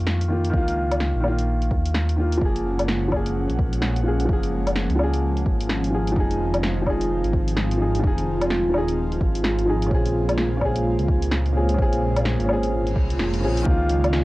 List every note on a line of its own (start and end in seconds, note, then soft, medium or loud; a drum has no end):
0.00 0.52 F2 medium
0.00 0.28 D#3 medium
0.00 0.30 A#3 medium
0.00 0.32 F4 loud
0.07 snare loud
0.21 closed hi-hat soft
0.28 0.48 D#3 medium
0.28 0.51 A#3 medium
0.32 0.52 F4 medium
0.45 closed hi-hat medium
0.50 1.13 C#2 medium
0.50 1.19 D#3 medium
0.50 kick loud
0.54 1.22 A#3 medium
0.54 1.24 F4 loud
0.68 closed hi-hat soft
0.92 closed hi-hat medium
0.92 low woodblock medium
1.00 snare loud
1.15 1.70 A#1 medium
1.20 2.14 D#3 medium
1.20 2.16 A#3 medium
1.20 low woodblock medium
1.28 2.18 F4 medium
1.39 closed hi-hat medium
1.62 closed hi-hat soft
1.71 2.40 D#2 medium
1.71 kick loud
1.85 closed hi-hat medium
1.94 snare loud
2.09 closed hi-hat soft
2.16 2.37 D#3 medium
2.16 2.38 A#3 medium
2.16 2.39 F4 medium
2.32 closed hi-hat medium
2.37 3.48 F#1 loud
2.37 3.07 F3 medium
2.37 9.87 F3 medium
2.37 9.87 G#3 medium
2.37 6.12 A#3 medium
2.37 6.12 C#4 medium
2.37 6.12 F#5 medium
2.37 kick loud
2.41 3.09 A#3 medium
2.41 3.11 G#4 loud
2.56 closed hi-hat soft
2.79 closed hi-hat medium
2.79 low woodblock medium
2.88 snare loud
3.08 4.01 F3 medium
3.08 kick medium
3.08 low woodblock medium
3.12 4.03 A#3 medium
3.16 4.05 G#4 medium
3.26 closed hi-hat medium
3.50 4.28 A#1 medium
3.50 closed hi-hat soft
3.59 kick loud
3.73 closed hi-hat medium
3.82 snare loud
3.96 closed hi-hat soft
4.04 4.23 F3 medium
4.04 4.26 A#3 medium
4.08 4.27 G#4 medium
4.20 closed hi-hat medium
4.25 4.94 F3 medium
4.29 4.88 F#1 medium
4.29 4.97 A#3 medium
4.29 4.99 G#4 loud
4.29 kick loud
4.43 closed hi-hat soft
4.67 closed hi-hat medium
4.67 low woodblock medium
4.76 snare loud
4.90 5.45 C#2 medium
4.90 closed hi-hat soft
4.95 5.89 F3 medium
4.95 low woodblock medium
5.00 5.91 A#3 medium
5.00 5.93 G#4 medium
5.14 closed hi-hat soft
5.37 closed hi-hat soft
5.46 6.15 G#1 medium
5.46 kick loud
5.61 closed hi-hat medium
5.69 snare loud
5.84 closed hi-hat soft
5.91 6.10 F3 medium
5.91 6.13 A#3 medium
5.91 6.14 G#4 medium
6.07 closed hi-hat medium
6.12 6.80 F3 medium
6.12 6.84 D#4 medium
6.16 7.23 F1 medium
6.16 9.87 D#3 medium
6.16 11.75 C4 medium
6.16 13.62 F4 medium
6.16 kick loud
6.20 6.86 G#4 loud
6.31 closed hi-hat soft
6.54 closed hi-hat medium
6.54 low woodblock medium
6.63 snare loud
6.82 7.76 F3 medium
6.82 7.78 D#4 medium
6.86 7.80 G#4 medium
6.86 kick medium
6.86 low woodblock medium
7.01 closed hi-hat soft
7.24 8.02 G#1 medium
7.24 closed hi-hat soft
7.33 kick loud
7.48 closed hi-hat medium
7.57 snare loud
7.71 closed hi-hat soft
7.78 7.98 F3 medium
7.78 8.01 D#4 medium
7.82 8.02 G#4 medium
7.95 closed hi-hat medium
7.99 8.68 F3 medium
8.03 8.63 F1 loud
8.03 8.72 D#4 medium
8.03 8.74 G#4 loud
8.03 kick loud
8.18 closed hi-hat soft
8.41 closed hi-hat medium
8.41 low woodblock medium
8.50 snare medium
8.65 9.20 D#1 medium
8.70 9.63 F3 medium
8.74 9.65 D#4 medium
8.74 9.67 G#4 loud
8.74 low woodblock medium
8.88 closed hi-hat soft
9.12 closed hi-hat soft
9.21 9.90 G#1 medium
9.21 kick medium
9.35 closed hi-hat medium
9.44 snare loud
9.58 closed hi-hat soft
9.65 9.87 F3 medium
9.65 9.88 D#4 medium
9.69 9.89 G#4 medium
9.82 closed hi-hat medium
9.86 10.56 C#3 medium
9.86 10.59 C4 medium
9.91 10.97 A#1 loud
9.91 13.62 A#2 medium
9.91 13.62 G#3 medium
9.91 13.62 A#3 medium
9.91 10.61 G#4 loud
9.91 kick loud
10.06 closed hi-hat soft
10.29 closed hi-hat medium
10.29 low woodblock medium
10.38 snare loud
10.57 11.51 C#3 medium
10.61 11.53 C4 medium
10.61 11.55 G#4 loud
10.61 kick medium
10.61 low woodblock medium
10.76 closed hi-hat medium
10.99 11.77 C#2 medium
10.99 closed hi-hat soft
11.08 kick medium
11.22 closed hi-hat medium
11.32 snare loud
11.46 closed hi-hat soft
11.53 11.73 C#3 medium
11.53 11.76 C4 medium
11.57 11.77 G#4 medium
11.69 closed hi-hat medium
11.74 12.45 C#3 medium
11.78 12.38 A#1 loud
11.78 12.47 C4 medium
11.78 kick loud
11.82 12.49 G#4 loud
11.93 closed hi-hat soft
12.17 closed hi-hat medium
12.17 low woodblock medium
12.25 snare loud
12.40 12.95 G#1 medium
12.40 closed hi-hat soft
12.45 13.40 C4 medium
12.45 13.39 C#4 medium
12.49 13.42 G#4 medium
12.49 low woodblock medium
12.63 closed hi-hat medium
12.73 reverse cymbal medium
12.87 closed hi-hat soft
12.96 13.19 C2 medium
12.96 kick loud
13.10 closed hi-hat medium
13.19 13.44 F1 medium
13.19 snare loud
13.34 closed hi-hat soft
13.41 13.65 A#1 medium
13.41 13.62 C#3 medium
13.41 13.63 C4 medium
13.45 13.64 G#4 medium
13.57 closed hi-hat medium
13.63 14.24 C#2 loud
13.63 14.24 D#3 medium
13.63 14.24 G#3 medium
13.63 14.24 A#3 medium
13.63 14.24 C#4 medium
13.63 14.24 F4 medium
13.63 kick loud
13.63 impact medium
13.67 14.24 F4 loud
13.67 14.24 D#5 medium
13.89 closed hi-hat medium
14.04 closed hi-hat soft
14.04 low woodblock medium
14.13 snare loud